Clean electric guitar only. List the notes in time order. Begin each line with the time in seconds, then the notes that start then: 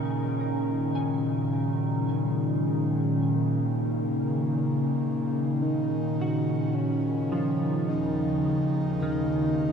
Already playing: A#3 F#5
0.95 G#5
1.17 F#3
6.21 F#4
7.32 F3 F4
9.03 D#3